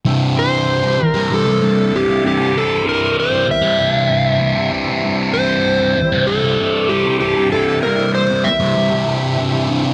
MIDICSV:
0, 0, Header, 1, 5, 480
1, 0, Start_track
1, 0, Key_signature, 0, "major"
1, 0, Tempo, 621118
1, 46, Time_signature, 4, 2, 24, 8
1, 7680, End_track
2, 0, Start_track
2, 0, Title_t, "Electric slide guitar"
2, 0, Program_c, 0, 29
2, 300, Note_on_c, 0, 72, 82
2, 818, Note_off_c, 0, 72, 0
2, 818, Note_on_c, 0, 70, 82
2, 1034, Note_off_c, 0, 70, 0
2, 1036, Note_on_c, 0, 69, 77
2, 1513, Note_on_c, 0, 67, 65
2, 1515, Note_off_c, 0, 69, 0
2, 1746, Note_off_c, 0, 67, 0
2, 1758, Note_on_c, 0, 67, 78
2, 1988, Note_off_c, 0, 67, 0
2, 1992, Note_on_c, 0, 69, 77
2, 2226, Note_off_c, 0, 69, 0
2, 2232, Note_on_c, 0, 70, 79
2, 2443, Note_off_c, 0, 70, 0
2, 2470, Note_on_c, 0, 72, 90
2, 2682, Note_off_c, 0, 72, 0
2, 2713, Note_on_c, 0, 76, 89
2, 3628, Note_off_c, 0, 76, 0
2, 4124, Note_on_c, 0, 72, 77
2, 4844, Note_on_c, 0, 69, 76
2, 4866, Note_off_c, 0, 72, 0
2, 5327, Note_on_c, 0, 67, 74
2, 5340, Note_off_c, 0, 69, 0
2, 5550, Note_off_c, 0, 67, 0
2, 5567, Note_on_c, 0, 67, 72
2, 5811, Note_off_c, 0, 67, 0
2, 5814, Note_on_c, 0, 69, 86
2, 6047, Note_off_c, 0, 69, 0
2, 6050, Note_on_c, 0, 70, 77
2, 6292, Note_off_c, 0, 70, 0
2, 6295, Note_on_c, 0, 72, 89
2, 6524, Note_on_c, 0, 76, 76
2, 6538, Note_off_c, 0, 72, 0
2, 7456, Note_off_c, 0, 76, 0
2, 7680, End_track
3, 0, Start_track
3, 0, Title_t, "Tonewheel organ"
3, 0, Program_c, 1, 16
3, 45, Note_on_c, 1, 60, 65
3, 46, Note_on_c, 1, 52, 61
3, 48, Note_on_c, 1, 55, 58
3, 51, Note_on_c, 1, 64, 70
3, 7680, Note_off_c, 1, 52, 0
3, 7680, Note_off_c, 1, 55, 0
3, 7680, Note_off_c, 1, 60, 0
3, 7680, Note_off_c, 1, 64, 0
3, 7680, End_track
4, 0, Start_track
4, 0, Title_t, "Distorted electric guitar"
4, 0, Program_c, 2, 30
4, 39, Note_on_c, 2, 36, 74
4, 48, Note_on_c, 2, 43, 83
4, 57, Note_on_c, 2, 48, 81
4, 274, Note_off_c, 2, 36, 0
4, 277, Note_on_c, 2, 36, 69
4, 278, Note_off_c, 2, 43, 0
4, 287, Note_on_c, 2, 43, 65
4, 292, Note_off_c, 2, 48, 0
4, 295, Note_on_c, 2, 48, 67
4, 633, Note_off_c, 2, 48, 0
4, 636, Note_on_c, 2, 48, 72
4, 645, Note_off_c, 2, 43, 0
4, 655, Note_on_c, 2, 43, 56
4, 754, Note_off_c, 2, 36, 0
4, 754, Note_off_c, 2, 43, 0
4, 762, Note_off_c, 2, 48, 0
4, 881, Note_on_c, 2, 48, 78
4, 899, Note_on_c, 2, 43, 59
4, 1002, Note_off_c, 2, 43, 0
4, 1003, Note_on_c, 2, 36, 78
4, 1011, Note_on_c, 2, 43, 103
4, 1018, Note_off_c, 2, 48, 0
4, 1021, Note_on_c, 2, 48, 96
4, 1122, Note_off_c, 2, 48, 0
4, 1125, Note_on_c, 2, 48, 62
4, 1134, Note_off_c, 2, 43, 0
4, 1143, Note_on_c, 2, 43, 60
4, 1241, Note_off_c, 2, 36, 0
4, 1242, Note_off_c, 2, 43, 0
4, 1244, Note_on_c, 2, 36, 67
4, 1251, Note_on_c, 2, 43, 65
4, 1257, Note_off_c, 2, 48, 0
4, 1260, Note_on_c, 2, 48, 66
4, 1483, Note_off_c, 2, 36, 0
4, 1486, Note_on_c, 2, 36, 77
4, 1488, Note_off_c, 2, 43, 0
4, 1497, Note_on_c, 2, 43, 78
4, 1500, Note_off_c, 2, 48, 0
4, 1503, Note_on_c, 2, 48, 97
4, 1598, Note_off_c, 2, 48, 0
4, 1601, Note_on_c, 2, 48, 64
4, 1609, Note_off_c, 2, 43, 0
4, 1618, Note_on_c, 2, 43, 60
4, 1719, Note_off_c, 2, 36, 0
4, 1720, Note_off_c, 2, 43, 0
4, 1722, Note_on_c, 2, 36, 67
4, 1729, Note_on_c, 2, 43, 68
4, 1736, Note_off_c, 2, 48, 0
4, 1739, Note_on_c, 2, 48, 75
4, 1836, Note_off_c, 2, 48, 0
4, 1839, Note_on_c, 2, 48, 60
4, 1848, Note_off_c, 2, 43, 0
4, 1858, Note_on_c, 2, 43, 51
4, 1957, Note_off_c, 2, 36, 0
4, 1960, Note_on_c, 2, 36, 92
4, 1961, Note_off_c, 2, 43, 0
4, 1970, Note_on_c, 2, 43, 81
4, 1974, Note_off_c, 2, 48, 0
4, 1977, Note_on_c, 2, 48, 87
4, 2190, Note_off_c, 2, 36, 0
4, 2193, Note_on_c, 2, 36, 63
4, 2194, Note_off_c, 2, 43, 0
4, 2203, Note_on_c, 2, 43, 62
4, 2209, Note_off_c, 2, 48, 0
4, 2212, Note_on_c, 2, 48, 75
4, 2556, Note_off_c, 2, 48, 0
4, 2559, Note_on_c, 2, 48, 72
4, 2566, Note_off_c, 2, 43, 0
4, 2576, Note_on_c, 2, 43, 55
4, 2678, Note_off_c, 2, 43, 0
4, 2683, Note_off_c, 2, 36, 0
4, 2687, Note_off_c, 2, 48, 0
4, 2798, Note_on_c, 2, 48, 83
4, 2817, Note_on_c, 2, 43, 59
4, 2922, Note_off_c, 2, 43, 0
4, 2924, Note_on_c, 2, 36, 87
4, 2932, Note_on_c, 2, 43, 101
4, 2938, Note_off_c, 2, 48, 0
4, 2941, Note_on_c, 2, 48, 98
4, 3038, Note_off_c, 2, 48, 0
4, 3041, Note_on_c, 2, 48, 61
4, 3050, Note_off_c, 2, 43, 0
4, 3060, Note_on_c, 2, 43, 51
4, 3156, Note_off_c, 2, 36, 0
4, 3159, Note_off_c, 2, 43, 0
4, 3159, Note_on_c, 2, 36, 67
4, 3168, Note_on_c, 2, 43, 65
4, 3174, Note_off_c, 2, 48, 0
4, 3177, Note_on_c, 2, 48, 70
4, 3391, Note_off_c, 2, 36, 0
4, 3394, Note_on_c, 2, 36, 85
4, 3397, Note_off_c, 2, 43, 0
4, 3406, Note_on_c, 2, 43, 86
4, 3412, Note_off_c, 2, 48, 0
4, 3415, Note_on_c, 2, 48, 81
4, 3521, Note_off_c, 2, 48, 0
4, 3524, Note_on_c, 2, 48, 60
4, 3532, Note_off_c, 2, 43, 0
4, 3541, Note_on_c, 2, 43, 55
4, 3639, Note_off_c, 2, 36, 0
4, 3642, Note_off_c, 2, 43, 0
4, 3643, Note_on_c, 2, 36, 65
4, 3651, Note_on_c, 2, 43, 76
4, 3656, Note_off_c, 2, 48, 0
4, 3659, Note_on_c, 2, 48, 78
4, 3763, Note_off_c, 2, 48, 0
4, 3766, Note_on_c, 2, 48, 76
4, 3776, Note_off_c, 2, 43, 0
4, 3785, Note_on_c, 2, 43, 55
4, 3879, Note_off_c, 2, 36, 0
4, 3882, Note_on_c, 2, 36, 90
4, 3884, Note_off_c, 2, 43, 0
4, 3893, Note_on_c, 2, 43, 85
4, 3898, Note_off_c, 2, 48, 0
4, 3901, Note_on_c, 2, 48, 96
4, 4120, Note_off_c, 2, 36, 0
4, 4123, Note_on_c, 2, 36, 62
4, 4125, Note_off_c, 2, 43, 0
4, 4134, Note_on_c, 2, 43, 69
4, 4141, Note_off_c, 2, 48, 0
4, 4144, Note_on_c, 2, 48, 79
4, 4486, Note_off_c, 2, 48, 0
4, 4489, Note_on_c, 2, 48, 73
4, 4495, Note_off_c, 2, 43, 0
4, 4504, Note_on_c, 2, 43, 56
4, 4603, Note_off_c, 2, 43, 0
4, 4607, Note_off_c, 2, 36, 0
4, 4613, Note_off_c, 2, 48, 0
4, 4730, Note_on_c, 2, 48, 91
4, 4746, Note_on_c, 2, 43, 62
4, 4844, Note_on_c, 2, 36, 93
4, 4845, Note_off_c, 2, 43, 0
4, 4854, Note_on_c, 2, 43, 100
4, 4860, Note_off_c, 2, 48, 0
4, 4863, Note_on_c, 2, 48, 107
4, 4963, Note_off_c, 2, 48, 0
4, 4966, Note_on_c, 2, 48, 62
4, 4973, Note_off_c, 2, 43, 0
4, 4982, Note_on_c, 2, 43, 57
4, 5084, Note_off_c, 2, 36, 0
4, 5087, Note_off_c, 2, 43, 0
4, 5087, Note_on_c, 2, 36, 69
4, 5096, Note_on_c, 2, 43, 68
4, 5102, Note_off_c, 2, 48, 0
4, 5105, Note_on_c, 2, 48, 74
4, 5322, Note_off_c, 2, 36, 0
4, 5325, Note_on_c, 2, 36, 84
4, 5327, Note_off_c, 2, 43, 0
4, 5336, Note_on_c, 2, 43, 93
4, 5339, Note_off_c, 2, 48, 0
4, 5342, Note_on_c, 2, 48, 94
4, 5447, Note_off_c, 2, 48, 0
4, 5450, Note_on_c, 2, 48, 57
4, 5458, Note_off_c, 2, 43, 0
4, 5467, Note_on_c, 2, 43, 57
4, 5566, Note_off_c, 2, 36, 0
4, 5569, Note_on_c, 2, 36, 71
4, 5571, Note_off_c, 2, 43, 0
4, 5580, Note_on_c, 2, 43, 64
4, 5583, Note_off_c, 2, 48, 0
4, 5586, Note_on_c, 2, 48, 73
4, 5684, Note_off_c, 2, 48, 0
4, 5688, Note_on_c, 2, 48, 75
4, 5697, Note_off_c, 2, 43, 0
4, 5706, Note_on_c, 2, 43, 52
4, 5801, Note_off_c, 2, 36, 0
4, 5802, Note_off_c, 2, 43, 0
4, 5804, Note_on_c, 2, 36, 79
4, 5812, Note_on_c, 2, 43, 84
4, 5820, Note_off_c, 2, 48, 0
4, 5823, Note_on_c, 2, 48, 101
4, 6041, Note_off_c, 2, 36, 0
4, 6044, Note_on_c, 2, 36, 68
4, 6046, Note_off_c, 2, 43, 0
4, 6056, Note_on_c, 2, 43, 63
4, 6060, Note_off_c, 2, 48, 0
4, 6063, Note_on_c, 2, 48, 73
4, 6404, Note_off_c, 2, 48, 0
4, 6407, Note_on_c, 2, 48, 70
4, 6416, Note_off_c, 2, 43, 0
4, 6425, Note_on_c, 2, 43, 53
4, 6519, Note_off_c, 2, 43, 0
4, 6527, Note_off_c, 2, 36, 0
4, 6532, Note_off_c, 2, 48, 0
4, 6644, Note_on_c, 2, 48, 87
4, 6660, Note_on_c, 2, 43, 65
4, 6765, Note_on_c, 2, 36, 92
4, 6767, Note_off_c, 2, 43, 0
4, 6776, Note_on_c, 2, 43, 91
4, 6778, Note_off_c, 2, 48, 0
4, 6781, Note_on_c, 2, 48, 87
4, 6890, Note_off_c, 2, 48, 0
4, 6893, Note_on_c, 2, 48, 61
4, 6898, Note_off_c, 2, 43, 0
4, 6908, Note_on_c, 2, 43, 53
4, 7003, Note_off_c, 2, 36, 0
4, 7006, Note_on_c, 2, 36, 58
4, 7007, Note_off_c, 2, 43, 0
4, 7016, Note_on_c, 2, 43, 62
4, 7022, Note_off_c, 2, 48, 0
4, 7025, Note_on_c, 2, 48, 74
4, 7246, Note_off_c, 2, 36, 0
4, 7249, Note_on_c, 2, 36, 89
4, 7251, Note_off_c, 2, 43, 0
4, 7260, Note_on_c, 2, 43, 94
4, 7263, Note_off_c, 2, 48, 0
4, 7267, Note_on_c, 2, 48, 95
4, 7360, Note_off_c, 2, 48, 0
4, 7363, Note_on_c, 2, 48, 65
4, 7371, Note_off_c, 2, 43, 0
4, 7380, Note_on_c, 2, 43, 51
4, 7478, Note_off_c, 2, 36, 0
4, 7482, Note_on_c, 2, 36, 65
4, 7486, Note_off_c, 2, 43, 0
4, 7495, Note_on_c, 2, 43, 74
4, 7497, Note_off_c, 2, 48, 0
4, 7500, Note_on_c, 2, 48, 68
4, 7600, Note_off_c, 2, 48, 0
4, 7603, Note_on_c, 2, 48, 62
4, 7615, Note_off_c, 2, 43, 0
4, 7624, Note_on_c, 2, 43, 54
4, 7680, Note_off_c, 2, 36, 0
4, 7680, Note_off_c, 2, 43, 0
4, 7680, Note_off_c, 2, 48, 0
4, 7680, End_track
5, 0, Start_track
5, 0, Title_t, "Muted distorted electric guitar strokes"
5, 757, Note_on_c, 9, 29, 44
5, 834, Note_off_c, 9, 29, 0
5, 2686, Note_on_c, 9, 29, 49
5, 2763, Note_off_c, 9, 29, 0
5, 4610, Note_on_c, 9, 29, 43
5, 4687, Note_off_c, 9, 29, 0
5, 6529, Note_on_c, 9, 29, 45
5, 6606, Note_off_c, 9, 29, 0
5, 7680, End_track
0, 0, End_of_file